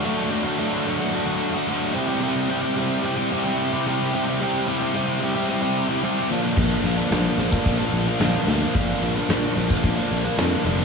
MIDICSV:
0, 0, Header, 1, 4, 480
1, 0, Start_track
1, 0, Tempo, 543971
1, 38, Time_signature, 4, 2, 24, 8
1, 9573, End_track
2, 0, Start_track
2, 0, Title_t, "Overdriven electric guitar"
2, 0, Program_c, 0, 29
2, 23, Note_on_c, 0, 50, 90
2, 34, Note_on_c, 0, 54, 90
2, 41, Note_on_c, 0, 57, 91
2, 49, Note_on_c, 0, 62, 89
2, 52, Note_on_c, 0, 66, 103
2, 245, Note_off_c, 0, 54, 0
2, 256, Note_on_c, 0, 54, 80
2, 258, Note_off_c, 0, 57, 0
2, 263, Note_off_c, 0, 62, 0
2, 269, Note_off_c, 0, 66, 0
2, 269, Note_on_c, 0, 57, 93
2, 273, Note_on_c, 0, 62, 89
2, 280, Note_on_c, 0, 66, 92
2, 372, Note_off_c, 0, 66, 0
2, 382, Note_on_c, 0, 66, 84
2, 388, Note_off_c, 0, 62, 0
2, 399, Note_on_c, 0, 62, 71
2, 400, Note_off_c, 0, 57, 0
2, 411, Note_on_c, 0, 57, 66
2, 491, Note_off_c, 0, 50, 0
2, 498, Note_off_c, 0, 54, 0
2, 501, Note_on_c, 0, 50, 84
2, 506, Note_off_c, 0, 57, 0
2, 509, Note_on_c, 0, 54, 96
2, 514, Note_off_c, 0, 62, 0
2, 516, Note_on_c, 0, 57, 101
2, 517, Note_off_c, 0, 66, 0
2, 524, Note_on_c, 0, 62, 104
2, 527, Note_on_c, 0, 66, 95
2, 736, Note_off_c, 0, 54, 0
2, 747, Note_on_c, 0, 54, 74
2, 748, Note_off_c, 0, 57, 0
2, 752, Note_off_c, 0, 62, 0
2, 759, Note_on_c, 0, 57, 73
2, 763, Note_on_c, 0, 62, 81
2, 765, Note_off_c, 0, 66, 0
2, 775, Note_on_c, 0, 66, 81
2, 857, Note_off_c, 0, 66, 0
2, 868, Note_on_c, 0, 66, 65
2, 871, Note_off_c, 0, 62, 0
2, 881, Note_on_c, 0, 62, 68
2, 883, Note_off_c, 0, 57, 0
2, 894, Note_on_c, 0, 57, 68
2, 974, Note_off_c, 0, 54, 0
2, 984, Note_on_c, 0, 54, 77
2, 985, Note_off_c, 0, 57, 0
2, 990, Note_off_c, 0, 50, 0
2, 994, Note_off_c, 0, 62, 0
2, 996, Note_on_c, 0, 57, 78
2, 1000, Note_off_c, 0, 66, 0
2, 1004, Note_on_c, 0, 62, 91
2, 1011, Note_on_c, 0, 66, 83
2, 1094, Note_off_c, 0, 66, 0
2, 1105, Note_on_c, 0, 66, 71
2, 1108, Note_off_c, 0, 62, 0
2, 1119, Note_on_c, 0, 62, 72
2, 1121, Note_off_c, 0, 57, 0
2, 1132, Note_on_c, 0, 57, 54
2, 1338, Note_off_c, 0, 66, 0
2, 1348, Note_on_c, 0, 66, 89
2, 1351, Note_off_c, 0, 62, 0
2, 1352, Note_off_c, 0, 54, 0
2, 1360, Note_off_c, 0, 57, 0
2, 1362, Note_on_c, 0, 62, 73
2, 1371, Note_on_c, 0, 57, 60
2, 1469, Note_on_c, 0, 50, 90
2, 1475, Note_off_c, 0, 57, 0
2, 1481, Note_off_c, 0, 62, 0
2, 1481, Note_on_c, 0, 54, 99
2, 1485, Note_on_c, 0, 57, 99
2, 1486, Note_off_c, 0, 66, 0
2, 1492, Note_on_c, 0, 62, 96
2, 1497, Note_on_c, 0, 66, 112
2, 1700, Note_off_c, 0, 50, 0
2, 1705, Note_off_c, 0, 54, 0
2, 1708, Note_off_c, 0, 57, 0
2, 1708, Note_on_c, 0, 48, 99
2, 1711, Note_off_c, 0, 62, 0
2, 1713, Note_off_c, 0, 66, 0
2, 1714, Note_on_c, 0, 55, 108
2, 1719, Note_on_c, 0, 60, 107
2, 1731, Note_on_c, 0, 64, 97
2, 1734, Note_on_c, 0, 67, 99
2, 1832, Note_off_c, 0, 67, 0
2, 1835, Note_on_c, 0, 67, 75
2, 1844, Note_off_c, 0, 64, 0
2, 1847, Note_on_c, 0, 64, 72
2, 1857, Note_off_c, 0, 60, 0
2, 1861, Note_on_c, 0, 60, 63
2, 1943, Note_off_c, 0, 48, 0
2, 1946, Note_on_c, 0, 48, 104
2, 1950, Note_off_c, 0, 55, 0
2, 1953, Note_on_c, 0, 55, 101
2, 1956, Note_off_c, 0, 60, 0
2, 1960, Note_on_c, 0, 60, 103
2, 1963, Note_off_c, 0, 64, 0
2, 1966, Note_off_c, 0, 67, 0
2, 1967, Note_on_c, 0, 64, 90
2, 1969, Note_on_c, 0, 67, 84
2, 2192, Note_off_c, 0, 55, 0
2, 2195, Note_on_c, 0, 55, 91
2, 2200, Note_off_c, 0, 60, 0
2, 2204, Note_on_c, 0, 60, 86
2, 2206, Note_off_c, 0, 64, 0
2, 2210, Note_on_c, 0, 64, 82
2, 2216, Note_off_c, 0, 67, 0
2, 2220, Note_on_c, 0, 67, 102
2, 2304, Note_off_c, 0, 67, 0
2, 2307, Note_on_c, 0, 67, 82
2, 2318, Note_off_c, 0, 64, 0
2, 2321, Note_on_c, 0, 64, 66
2, 2333, Note_off_c, 0, 60, 0
2, 2337, Note_on_c, 0, 60, 78
2, 2432, Note_off_c, 0, 48, 0
2, 2435, Note_on_c, 0, 48, 99
2, 2439, Note_off_c, 0, 55, 0
2, 2442, Note_on_c, 0, 55, 98
2, 2444, Note_off_c, 0, 60, 0
2, 2448, Note_on_c, 0, 60, 99
2, 2452, Note_off_c, 0, 64, 0
2, 2455, Note_on_c, 0, 64, 97
2, 2458, Note_off_c, 0, 67, 0
2, 2462, Note_on_c, 0, 67, 101
2, 2660, Note_off_c, 0, 55, 0
2, 2669, Note_off_c, 0, 60, 0
2, 2670, Note_on_c, 0, 55, 76
2, 2675, Note_off_c, 0, 64, 0
2, 2679, Note_on_c, 0, 60, 79
2, 2684, Note_off_c, 0, 67, 0
2, 2686, Note_on_c, 0, 64, 78
2, 2695, Note_on_c, 0, 67, 86
2, 2782, Note_off_c, 0, 67, 0
2, 2793, Note_on_c, 0, 67, 76
2, 2795, Note_off_c, 0, 64, 0
2, 2805, Note_on_c, 0, 64, 69
2, 2812, Note_off_c, 0, 60, 0
2, 2822, Note_on_c, 0, 60, 65
2, 2909, Note_off_c, 0, 55, 0
2, 2917, Note_off_c, 0, 48, 0
2, 2920, Note_on_c, 0, 55, 85
2, 2922, Note_off_c, 0, 60, 0
2, 2930, Note_off_c, 0, 64, 0
2, 2933, Note_on_c, 0, 60, 71
2, 2935, Note_off_c, 0, 67, 0
2, 2940, Note_on_c, 0, 64, 80
2, 2946, Note_on_c, 0, 67, 84
2, 3027, Note_off_c, 0, 67, 0
2, 3038, Note_on_c, 0, 67, 70
2, 3043, Note_off_c, 0, 64, 0
2, 3053, Note_off_c, 0, 60, 0
2, 3053, Note_on_c, 0, 64, 74
2, 3063, Note_on_c, 0, 60, 55
2, 3277, Note_off_c, 0, 67, 0
2, 3280, Note_off_c, 0, 55, 0
2, 3287, Note_off_c, 0, 64, 0
2, 3287, Note_on_c, 0, 67, 86
2, 3298, Note_on_c, 0, 64, 76
2, 3302, Note_off_c, 0, 60, 0
2, 3312, Note_on_c, 0, 60, 74
2, 3403, Note_on_c, 0, 48, 96
2, 3408, Note_off_c, 0, 60, 0
2, 3411, Note_off_c, 0, 64, 0
2, 3411, Note_on_c, 0, 55, 100
2, 3415, Note_off_c, 0, 67, 0
2, 3419, Note_on_c, 0, 60, 104
2, 3422, Note_on_c, 0, 64, 109
2, 3426, Note_on_c, 0, 67, 104
2, 3630, Note_off_c, 0, 55, 0
2, 3641, Note_off_c, 0, 60, 0
2, 3641, Note_on_c, 0, 55, 81
2, 3649, Note_off_c, 0, 64, 0
2, 3651, Note_on_c, 0, 60, 86
2, 3657, Note_off_c, 0, 67, 0
2, 3659, Note_on_c, 0, 64, 84
2, 3668, Note_on_c, 0, 67, 79
2, 3752, Note_off_c, 0, 67, 0
2, 3763, Note_on_c, 0, 67, 72
2, 3765, Note_off_c, 0, 64, 0
2, 3776, Note_on_c, 0, 64, 72
2, 3778, Note_off_c, 0, 60, 0
2, 3789, Note_on_c, 0, 60, 65
2, 3873, Note_off_c, 0, 48, 0
2, 3884, Note_on_c, 0, 48, 89
2, 3887, Note_off_c, 0, 55, 0
2, 3889, Note_off_c, 0, 60, 0
2, 3897, Note_off_c, 0, 64, 0
2, 3898, Note_on_c, 0, 55, 95
2, 3900, Note_off_c, 0, 67, 0
2, 3900, Note_on_c, 0, 60, 109
2, 3907, Note_on_c, 0, 64, 92
2, 3911, Note_on_c, 0, 67, 100
2, 4113, Note_off_c, 0, 55, 0
2, 4123, Note_on_c, 0, 55, 83
2, 4124, Note_off_c, 0, 60, 0
2, 4132, Note_off_c, 0, 64, 0
2, 4134, Note_on_c, 0, 60, 84
2, 4138, Note_off_c, 0, 67, 0
2, 4142, Note_on_c, 0, 64, 89
2, 4149, Note_on_c, 0, 67, 89
2, 4220, Note_off_c, 0, 67, 0
2, 4230, Note_on_c, 0, 67, 83
2, 4236, Note_off_c, 0, 64, 0
2, 4242, Note_off_c, 0, 60, 0
2, 4247, Note_on_c, 0, 64, 79
2, 4253, Note_on_c, 0, 60, 72
2, 4344, Note_off_c, 0, 48, 0
2, 4355, Note_on_c, 0, 48, 100
2, 4356, Note_off_c, 0, 55, 0
2, 4363, Note_off_c, 0, 60, 0
2, 4366, Note_on_c, 0, 55, 90
2, 4367, Note_off_c, 0, 64, 0
2, 4372, Note_off_c, 0, 67, 0
2, 4374, Note_on_c, 0, 60, 103
2, 4378, Note_on_c, 0, 64, 109
2, 4383, Note_on_c, 0, 67, 110
2, 4581, Note_off_c, 0, 55, 0
2, 4592, Note_off_c, 0, 60, 0
2, 4592, Note_on_c, 0, 55, 72
2, 4600, Note_off_c, 0, 64, 0
2, 4602, Note_on_c, 0, 60, 73
2, 4610, Note_on_c, 0, 64, 72
2, 4611, Note_off_c, 0, 67, 0
2, 4622, Note_on_c, 0, 67, 77
2, 4708, Note_off_c, 0, 67, 0
2, 4718, Note_on_c, 0, 67, 78
2, 4721, Note_off_c, 0, 64, 0
2, 4731, Note_on_c, 0, 64, 72
2, 4734, Note_off_c, 0, 60, 0
2, 4744, Note_on_c, 0, 60, 62
2, 4824, Note_off_c, 0, 55, 0
2, 4834, Note_off_c, 0, 60, 0
2, 4835, Note_on_c, 0, 55, 76
2, 4837, Note_off_c, 0, 48, 0
2, 4845, Note_off_c, 0, 64, 0
2, 4845, Note_on_c, 0, 60, 75
2, 4851, Note_off_c, 0, 67, 0
2, 4856, Note_on_c, 0, 64, 75
2, 4861, Note_on_c, 0, 67, 74
2, 4943, Note_off_c, 0, 67, 0
2, 4953, Note_on_c, 0, 67, 73
2, 4957, Note_off_c, 0, 64, 0
2, 4967, Note_on_c, 0, 64, 57
2, 4969, Note_off_c, 0, 60, 0
2, 4979, Note_on_c, 0, 60, 61
2, 5176, Note_off_c, 0, 67, 0
2, 5187, Note_on_c, 0, 67, 83
2, 5193, Note_off_c, 0, 64, 0
2, 5197, Note_off_c, 0, 55, 0
2, 5204, Note_off_c, 0, 60, 0
2, 5204, Note_on_c, 0, 64, 71
2, 5215, Note_on_c, 0, 60, 58
2, 5314, Note_off_c, 0, 60, 0
2, 5315, Note_on_c, 0, 48, 82
2, 5322, Note_off_c, 0, 64, 0
2, 5324, Note_on_c, 0, 55, 87
2, 5325, Note_on_c, 0, 60, 81
2, 5328, Note_off_c, 0, 67, 0
2, 5333, Note_on_c, 0, 64, 95
2, 5339, Note_on_c, 0, 67, 105
2, 5542, Note_off_c, 0, 48, 0
2, 5547, Note_off_c, 0, 55, 0
2, 5547, Note_off_c, 0, 60, 0
2, 5551, Note_off_c, 0, 64, 0
2, 5551, Note_on_c, 0, 46, 92
2, 5554, Note_off_c, 0, 67, 0
2, 5560, Note_on_c, 0, 50, 100
2, 5568, Note_on_c, 0, 53, 91
2, 5573, Note_on_c, 0, 58, 103
2, 5577, Note_on_c, 0, 62, 108
2, 5666, Note_off_c, 0, 62, 0
2, 5669, Note_on_c, 0, 62, 71
2, 5680, Note_off_c, 0, 58, 0
2, 5683, Note_on_c, 0, 58, 68
2, 5690, Note_off_c, 0, 53, 0
2, 5693, Note_on_c, 0, 53, 56
2, 5790, Note_off_c, 0, 46, 0
2, 5791, Note_off_c, 0, 50, 0
2, 5793, Note_on_c, 0, 46, 96
2, 5802, Note_off_c, 0, 53, 0
2, 5802, Note_on_c, 0, 50, 80
2, 5806, Note_on_c, 0, 53, 92
2, 5812, Note_off_c, 0, 58, 0
2, 5815, Note_on_c, 0, 58, 94
2, 5816, Note_off_c, 0, 62, 0
2, 5819, Note_on_c, 0, 62, 90
2, 6028, Note_off_c, 0, 50, 0
2, 6038, Note_on_c, 0, 50, 79
2, 6043, Note_off_c, 0, 53, 0
2, 6047, Note_on_c, 0, 53, 84
2, 6051, Note_off_c, 0, 58, 0
2, 6054, Note_on_c, 0, 58, 94
2, 6056, Note_off_c, 0, 62, 0
2, 6060, Note_on_c, 0, 62, 78
2, 6148, Note_off_c, 0, 62, 0
2, 6151, Note_on_c, 0, 62, 80
2, 6163, Note_off_c, 0, 58, 0
2, 6166, Note_on_c, 0, 58, 64
2, 6170, Note_off_c, 0, 53, 0
2, 6174, Note_on_c, 0, 53, 57
2, 6268, Note_off_c, 0, 46, 0
2, 6271, Note_off_c, 0, 50, 0
2, 6272, Note_on_c, 0, 46, 90
2, 6282, Note_on_c, 0, 50, 102
2, 6287, Note_off_c, 0, 53, 0
2, 6290, Note_on_c, 0, 53, 98
2, 6292, Note_off_c, 0, 58, 0
2, 6295, Note_on_c, 0, 58, 98
2, 6297, Note_off_c, 0, 62, 0
2, 6300, Note_on_c, 0, 62, 99
2, 6508, Note_off_c, 0, 50, 0
2, 6519, Note_on_c, 0, 50, 71
2, 6523, Note_off_c, 0, 53, 0
2, 6526, Note_on_c, 0, 53, 81
2, 6531, Note_off_c, 0, 58, 0
2, 6534, Note_on_c, 0, 58, 81
2, 6539, Note_off_c, 0, 62, 0
2, 6542, Note_on_c, 0, 62, 90
2, 6625, Note_off_c, 0, 62, 0
2, 6629, Note_on_c, 0, 62, 80
2, 6635, Note_off_c, 0, 58, 0
2, 6645, Note_off_c, 0, 53, 0
2, 6646, Note_on_c, 0, 58, 72
2, 6656, Note_on_c, 0, 53, 60
2, 6739, Note_off_c, 0, 50, 0
2, 6749, Note_off_c, 0, 53, 0
2, 6750, Note_on_c, 0, 50, 64
2, 6757, Note_off_c, 0, 58, 0
2, 6759, Note_on_c, 0, 53, 63
2, 6768, Note_on_c, 0, 58, 75
2, 6773, Note_off_c, 0, 62, 0
2, 6777, Note_on_c, 0, 62, 74
2, 6867, Note_off_c, 0, 62, 0
2, 6871, Note_on_c, 0, 62, 67
2, 6872, Note_off_c, 0, 58, 0
2, 6883, Note_on_c, 0, 58, 62
2, 6884, Note_off_c, 0, 53, 0
2, 6895, Note_on_c, 0, 53, 55
2, 7113, Note_off_c, 0, 50, 0
2, 7114, Note_off_c, 0, 62, 0
2, 7117, Note_on_c, 0, 62, 91
2, 7120, Note_off_c, 0, 58, 0
2, 7130, Note_on_c, 0, 58, 73
2, 7132, Note_off_c, 0, 53, 0
2, 7142, Note_on_c, 0, 53, 69
2, 7223, Note_off_c, 0, 46, 0
2, 7226, Note_on_c, 0, 46, 108
2, 7229, Note_off_c, 0, 53, 0
2, 7233, Note_on_c, 0, 50, 90
2, 7237, Note_off_c, 0, 58, 0
2, 7240, Note_on_c, 0, 53, 107
2, 7248, Note_on_c, 0, 58, 99
2, 7249, Note_off_c, 0, 62, 0
2, 7252, Note_on_c, 0, 62, 106
2, 7463, Note_off_c, 0, 50, 0
2, 7474, Note_on_c, 0, 50, 80
2, 7476, Note_off_c, 0, 53, 0
2, 7480, Note_off_c, 0, 58, 0
2, 7487, Note_on_c, 0, 53, 71
2, 7490, Note_on_c, 0, 58, 85
2, 7496, Note_off_c, 0, 62, 0
2, 7499, Note_on_c, 0, 62, 76
2, 7585, Note_off_c, 0, 62, 0
2, 7588, Note_on_c, 0, 62, 77
2, 7592, Note_off_c, 0, 58, 0
2, 7602, Note_on_c, 0, 58, 71
2, 7604, Note_off_c, 0, 53, 0
2, 7614, Note_on_c, 0, 53, 65
2, 7699, Note_off_c, 0, 46, 0
2, 7709, Note_on_c, 0, 46, 86
2, 7711, Note_off_c, 0, 50, 0
2, 7717, Note_off_c, 0, 53, 0
2, 7720, Note_off_c, 0, 58, 0
2, 7722, Note_on_c, 0, 50, 89
2, 7728, Note_on_c, 0, 53, 84
2, 7731, Note_on_c, 0, 58, 101
2, 7733, Note_off_c, 0, 62, 0
2, 7736, Note_on_c, 0, 62, 94
2, 7945, Note_off_c, 0, 50, 0
2, 7953, Note_off_c, 0, 53, 0
2, 7956, Note_on_c, 0, 50, 86
2, 7962, Note_off_c, 0, 58, 0
2, 7964, Note_on_c, 0, 53, 84
2, 7972, Note_on_c, 0, 58, 84
2, 7973, Note_off_c, 0, 62, 0
2, 7977, Note_on_c, 0, 62, 89
2, 8066, Note_off_c, 0, 62, 0
2, 8070, Note_on_c, 0, 62, 77
2, 8071, Note_off_c, 0, 58, 0
2, 8082, Note_on_c, 0, 58, 74
2, 8083, Note_off_c, 0, 53, 0
2, 8094, Note_on_c, 0, 53, 75
2, 8185, Note_off_c, 0, 46, 0
2, 8192, Note_off_c, 0, 50, 0
2, 8196, Note_on_c, 0, 46, 88
2, 8197, Note_off_c, 0, 53, 0
2, 8203, Note_on_c, 0, 50, 82
2, 8206, Note_off_c, 0, 58, 0
2, 8208, Note_on_c, 0, 53, 94
2, 8216, Note_on_c, 0, 58, 90
2, 8217, Note_off_c, 0, 62, 0
2, 8221, Note_on_c, 0, 62, 113
2, 8422, Note_off_c, 0, 50, 0
2, 8432, Note_off_c, 0, 53, 0
2, 8433, Note_on_c, 0, 50, 83
2, 8439, Note_off_c, 0, 58, 0
2, 8442, Note_on_c, 0, 53, 73
2, 8450, Note_on_c, 0, 58, 79
2, 8459, Note_off_c, 0, 62, 0
2, 8462, Note_on_c, 0, 62, 81
2, 8555, Note_off_c, 0, 62, 0
2, 8558, Note_on_c, 0, 62, 70
2, 8561, Note_off_c, 0, 58, 0
2, 8571, Note_off_c, 0, 53, 0
2, 8571, Note_on_c, 0, 58, 68
2, 8581, Note_on_c, 0, 53, 57
2, 8665, Note_off_c, 0, 50, 0
2, 8675, Note_off_c, 0, 46, 0
2, 8676, Note_on_c, 0, 50, 68
2, 8678, Note_off_c, 0, 53, 0
2, 8685, Note_off_c, 0, 58, 0
2, 8688, Note_on_c, 0, 53, 70
2, 8696, Note_on_c, 0, 58, 82
2, 8702, Note_off_c, 0, 62, 0
2, 8705, Note_on_c, 0, 62, 83
2, 8794, Note_off_c, 0, 62, 0
2, 8798, Note_on_c, 0, 62, 64
2, 8802, Note_off_c, 0, 58, 0
2, 8813, Note_off_c, 0, 53, 0
2, 8813, Note_on_c, 0, 58, 68
2, 8823, Note_on_c, 0, 53, 61
2, 9028, Note_off_c, 0, 62, 0
2, 9031, Note_on_c, 0, 62, 80
2, 9035, Note_off_c, 0, 50, 0
2, 9036, Note_off_c, 0, 58, 0
2, 9047, Note_on_c, 0, 58, 73
2, 9049, Note_off_c, 0, 53, 0
2, 9060, Note_on_c, 0, 53, 67
2, 9148, Note_on_c, 0, 46, 81
2, 9153, Note_off_c, 0, 53, 0
2, 9156, Note_on_c, 0, 50, 104
2, 9157, Note_off_c, 0, 58, 0
2, 9164, Note_on_c, 0, 53, 113
2, 9167, Note_on_c, 0, 58, 97
2, 9168, Note_off_c, 0, 62, 0
2, 9172, Note_on_c, 0, 62, 112
2, 9373, Note_off_c, 0, 50, 0
2, 9383, Note_off_c, 0, 53, 0
2, 9383, Note_on_c, 0, 50, 79
2, 9389, Note_off_c, 0, 58, 0
2, 9394, Note_on_c, 0, 53, 72
2, 9399, Note_on_c, 0, 58, 89
2, 9406, Note_off_c, 0, 62, 0
2, 9409, Note_on_c, 0, 62, 89
2, 9497, Note_off_c, 0, 62, 0
2, 9501, Note_on_c, 0, 62, 71
2, 9504, Note_off_c, 0, 58, 0
2, 9514, Note_on_c, 0, 58, 65
2, 9516, Note_off_c, 0, 53, 0
2, 9526, Note_on_c, 0, 53, 62
2, 9573, Note_off_c, 0, 46, 0
2, 9573, Note_off_c, 0, 50, 0
2, 9573, Note_off_c, 0, 53, 0
2, 9573, Note_off_c, 0, 58, 0
2, 9573, Note_off_c, 0, 62, 0
2, 9573, End_track
3, 0, Start_track
3, 0, Title_t, "Fingered electric bass"
3, 0, Program_c, 1, 33
3, 5801, Note_on_c, 1, 34, 93
3, 5944, Note_off_c, 1, 34, 0
3, 6033, Note_on_c, 1, 34, 90
3, 6179, Note_off_c, 1, 34, 0
3, 6271, Note_on_c, 1, 34, 93
3, 6417, Note_off_c, 1, 34, 0
3, 6510, Note_on_c, 1, 34, 96
3, 6657, Note_off_c, 1, 34, 0
3, 6757, Note_on_c, 1, 34, 89
3, 6902, Note_off_c, 1, 34, 0
3, 6991, Note_on_c, 1, 34, 80
3, 7137, Note_off_c, 1, 34, 0
3, 7234, Note_on_c, 1, 34, 84
3, 7379, Note_off_c, 1, 34, 0
3, 7474, Note_on_c, 1, 38, 87
3, 7619, Note_off_c, 1, 38, 0
3, 7721, Note_on_c, 1, 34, 101
3, 7864, Note_off_c, 1, 34, 0
3, 7956, Note_on_c, 1, 34, 97
3, 8100, Note_off_c, 1, 34, 0
3, 8196, Note_on_c, 1, 34, 92
3, 8340, Note_off_c, 1, 34, 0
3, 8441, Note_on_c, 1, 34, 87
3, 8583, Note_off_c, 1, 34, 0
3, 8681, Note_on_c, 1, 34, 99
3, 8823, Note_off_c, 1, 34, 0
3, 8921, Note_on_c, 1, 34, 84
3, 9063, Note_off_c, 1, 34, 0
3, 9157, Note_on_c, 1, 41, 89
3, 9300, Note_off_c, 1, 41, 0
3, 9392, Note_on_c, 1, 29, 93
3, 9537, Note_off_c, 1, 29, 0
3, 9573, End_track
4, 0, Start_track
4, 0, Title_t, "Drums"
4, 5797, Note_on_c, 9, 49, 91
4, 5799, Note_on_c, 9, 36, 94
4, 5885, Note_off_c, 9, 49, 0
4, 5888, Note_off_c, 9, 36, 0
4, 6038, Note_on_c, 9, 46, 66
4, 6127, Note_off_c, 9, 46, 0
4, 6279, Note_on_c, 9, 46, 94
4, 6285, Note_on_c, 9, 38, 108
4, 6367, Note_off_c, 9, 46, 0
4, 6373, Note_off_c, 9, 38, 0
4, 6519, Note_on_c, 9, 46, 62
4, 6607, Note_off_c, 9, 46, 0
4, 6640, Note_on_c, 9, 36, 94
4, 6728, Note_off_c, 9, 36, 0
4, 6756, Note_on_c, 9, 46, 99
4, 6759, Note_on_c, 9, 36, 107
4, 6844, Note_off_c, 9, 46, 0
4, 6847, Note_off_c, 9, 36, 0
4, 6999, Note_on_c, 9, 46, 67
4, 7087, Note_off_c, 9, 46, 0
4, 7237, Note_on_c, 9, 46, 84
4, 7243, Note_on_c, 9, 38, 109
4, 7325, Note_off_c, 9, 46, 0
4, 7331, Note_off_c, 9, 38, 0
4, 7476, Note_on_c, 9, 46, 59
4, 7564, Note_off_c, 9, 46, 0
4, 7719, Note_on_c, 9, 46, 80
4, 7721, Note_on_c, 9, 36, 90
4, 7807, Note_off_c, 9, 46, 0
4, 7809, Note_off_c, 9, 36, 0
4, 7958, Note_on_c, 9, 46, 71
4, 8046, Note_off_c, 9, 46, 0
4, 8201, Note_on_c, 9, 46, 76
4, 8207, Note_on_c, 9, 38, 116
4, 8289, Note_off_c, 9, 46, 0
4, 8295, Note_off_c, 9, 38, 0
4, 8440, Note_on_c, 9, 46, 58
4, 8529, Note_off_c, 9, 46, 0
4, 8562, Note_on_c, 9, 36, 99
4, 8650, Note_off_c, 9, 36, 0
4, 8678, Note_on_c, 9, 46, 88
4, 8682, Note_on_c, 9, 36, 110
4, 8766, Note_off_c, 9, 46, 0
4, 8770, Note_off_c, 9, 36, 0
4, 8919, Note_on_c, 9, 46, 59
4, 9007, Note_off_c, 9, 46, 0
4, 9159, Note_on_c, 9, 46, 76
4, 9165, Note_on_c, 9, 38, 127
4, 9247, Note_off_c, 9, 46, 0
4, 9254, Note_off_c, 9, 38, 0
4, 9403, Note_on_c, 9, 46, 57
4, 9491, Note_off_c, 9, 46, 0
4, 9573, End_track
0, 0, End_of_file